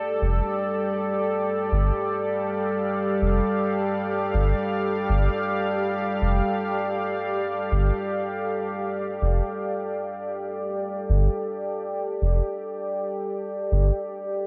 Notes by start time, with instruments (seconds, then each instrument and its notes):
Already playing: ambient pad G3 G4 A4 D5
0.22 analog synth bass F1
1.11 ambient pad F5
1.72 analog synth bass G1
3.22 analog synth bass F1
4.34 analog synth bass G1
5.10 analog synth bass G1
6.22 analog synth bass F1
7.72 analog synth bass G1
9.22 analog synth bass F1
11.10 analog synth bass G1
12.22 analog synth bass F1
13.72 analog synth bass G1